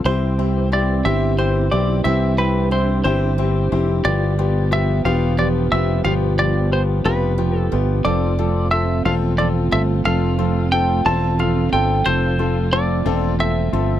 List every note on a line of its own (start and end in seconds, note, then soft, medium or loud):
0.05 1.01 C2 medium
0.05 4.01 E3 medium
0.05 0.38 C4 medium
0.05 0.31 C4 medium
0.05 2.03 C4 medium
0.05 0.31 E4 medium
0.05 8.02 G4 medium
0.05 0.32 G4 medium
0.05 0.68 C5 medium
0.38 0.65 C4 medium
0.38 1.37 C4 medium
0.38 0.65 E4 medium
0.38 0.65 G4 medium
0.72 0.98 C4 medium
0.72 1.71 E4 medium
0.72 0.98 E4 medium
0.72 0.98 G4 medium
0.72 1.07 D5 medium
1.05 1.68 G1 loud
1.05 1.31 C4 medium
1.05 1.31 E4 medium
1.05 3.04 G4 medium
1.05 1.32 G4 loud
1.05 1.36 E5 medium
1.38 2.04 C4 medium
1.38 1.65 C4 medium
1.38 1.65 E4 medium
1.38 1.65 G4 medium
1.38 1.73 C5 medium
1.71 2.03 B1 medium
1.71 1.98 C4 medium
1.71 1.98 E4 medium
1.71 2.70 E4 medium
1.71 1.98 G4 medium
1.71 2.04 D5 medium
2.04 3.01 C2 loud
2.04 2.31 C4 medium
2.04 2.37 C4 medium
2.04 4.02 D4 medium
2.04 2.31 E4 medium
2.04 2.32 G4 medium
2.04 2.36 E5 medium
2.38 3.37 C4 medium
2.38 2.65 C4 medium
2.38 2.64 E4 medium
2.38 2.65 G4 medium
2.38 2.69 B4 medium
2.71 2.98 C4 medium
2.71 3.71 E4 medium
2.71 2.98 E4 medium
2.71 2.98 G4 medium
2.71 3.03 C5 medium
3.04 3.68 G1 loud
3.04 3.31 C4 loud
3.04 3.31 E4 medium
3.04 4.42 G4 medium
3.04 3.31 G4 loud
3.04 3.76 C5 medium
3.38 4.12 C4 medium
3.38 3.65 C4 medium
3.38 3.65 E4 medium
3.38 3.65 G4 medium
3.72 4.03 F1 loud
3.72 3.98 C4 medium
3.72 4.12 E4 medium
3.72 3.98 E4 medium
3.72 3.98 G4 loud
4.04 5.01 G1 loud
4.04 8.01 B2 medium
4.04 8.01 F3 medium
4.04 4.38 F3 medium
4.04 4.31 B3 medium
4.04 4.31 F4 medium
4.04 4.31 G4 loud
4.04 4.68 D5 loud
4.38 5.38 F3 medium
4.38 4.65 B3 medium
4.38 4.65 F4 medium
4.38 4.65 G4 medium
4.71 4.97 B3 medium
4.71 5.71 B3 medium
4.71 4.97 F4 medium
4.71 4.98 G4 medium
4.71 5.03 E5 loud
5.05 5.68 E1 loud
5.05 5.31 B3 loud
5.05 7.04 D4 medium
5.05 5.31 F4 loud
5.05 5.31 G4 loud
5.05 5.36 F5 medium
5.38 6.04 F3 medium
5.38 5.65 B3 medium
5.38 5.65 F4 medium
5.38 5.65 G4 medium
5.38 5.48 D5 loud
5.72 6.03 F1 loud
5.72 5.98 B3 medium
5.72 6.72 B3 medium
5.72 5.98 F4 medium
5.72 5.98 G4 medium
5.72 6.04 E5 medium
6.04 7.01 G1 loud
6.04 6.38 F3 medium
6.04 6.31 B3 medium
6.04 6.31 F4 medium
6.04 6.32 G4 medium
6.04 6.14 F5 loud
6.38 7.37 F3 medium
6.38 6.64 B3 medium
6.38 6.65 F4 medium
6.38 6.65 G4 medium
6.38 6.73 D5 loud
6.71 6.98 B3 medium
6.71 6.98 F4 medium
6.71 6.98 G4 medium
6.71 6.82 C5 medium
7.05 7.68 F1 medium
7.05 7.31 B3 loud
7.05 8.12 D4 medium
7.05 7.31 F4 loud
7.05 7.31 G4 medium
7.05 7.58 B4 medium
7.38 8.05 F3 medium
7.38 7.64 B3 medium
7.38 7.65 F4 medium
7.38 7.65 G4 medium
7.58 7.76 A4 medium
7.72 8.04 G1 medium
7.72 8.12 B3 medium
7.72 7.98 B3 medium
7.72 7.98 F4 medium
7.72 7.98 G4 medium
8.05 9.01 F1 medium
8.05 8.37 F3 medium
8.05 14.00 A3 medium
8.05 8.31 C4 medium
8.05 14.00 C4 medium
8.05 8.31 F4 medium
8.05 14.00 F4 medium
8.05 8.32 A4 medium
8.05 8.71 D5 medium
8.39 9.37 F3 medium
8.39 8.65 C4 medium
8.39 8.65 F4 medium
8.39 8.65 A4 medium
8.71 9.70 A3 medium
8.71 8.98 C4 medium
8.71 8.98 F4 medium
8.71 8.98 A4 medium
8.71 9.03 E5 loud
9.05 9.68 E1 loud
9.05 9.31 C4 medium
9.05 11.06 C4 medium
9.05 9.31 F4 medium
9.05 9.32 A4 loud
9.05 9.14 F5 loud
9.38 10.04 F3 medium
9.38 9.65 C4 medium
9.38 9.65 F4 medium
9.38 9.65 A4 medium
9.38 9.47 D5 medium
9.72 10.04 G1 medium
9.72 10.71 A3 medium
9.72 9.98 C4 medium
9.72 9.98 F4 medium
9.72 9.98 A4 medium
9.72 9.81 E5 loud
10.05 11.01 F1 loud
10.05 10.38 F3 medium
10.05 10.31 C4 medium
10.05 10.32 F4 medium
10.05 10.32 A4 loud
10.05 10.68 F5 loud
10.38 11.38 F3 medium
10.38 10.65 C4 medium
10.38 10.65 F4 medium
10.38 10.65 A4 medium
10.72 11.72 A3 medium
10.72 10.98 C4 medium
10.72 10.98 F4 medium
10.72 10.99 A4 medium
10.72 11.03 G5 loud
11.05 11.69 E1 loud
11.05 11.32 C4 loud
11.05 13.05 C4 medium
11.05 11.32 F4 medium
11.05 11.32 A4 loud
11.05 11.40 A5 loud
11.39 12.04 F3 medium
11.39 11.65 C4 medium
11.39 11.65 F4 medium
11.39 11.65 A4 medium
11.39 11.72 F5 loud
11.72 12.04 G1 loud
11.72 12.71 A3 medium
11.72 11.98 C4 medium
11.72 11.99 F4 medium
11.72 11.99 A4 loud
11.72 12.07 G5 loud
12.05 13.02 F1 loud
12.05 12.38 F3 medium
12.05 12.32 C4 medium
12.05 12.32 F4 medium
12.05 12.32 A4 loud
12.05 12.75 C5 loud
12.39 13.39 F3 medium
12.39 12.65 C4 medium
12.39 12.65 F4 medium
12.39 12.66 A4 medium
12.72 13.72 A3 medium
12.72 12.98 C4 medium
12.72 12.99 F4 medium
12.72 12.99 A4 medium
12.72 13.36 D5 loud
13.06 13.69 E1 loud
13.06 13.32 C4 loud
13.06 14.00 C4 medium
13.06 13.32 F4 medium
13.06 13.32 A4 loud
13.39 14.00 F3 medium
13.39 13.65 C4 medium
13.39 13.65 F4 medium
13.39 13.66 A4 medium
13.39 14.00 E5 loud
13.73 14.00 G1 medium
13.73 14.00 A3 medium
13.73 13.99 C4 medium
13.73 13.99 F4 medium
13.73 13.99 A4 medium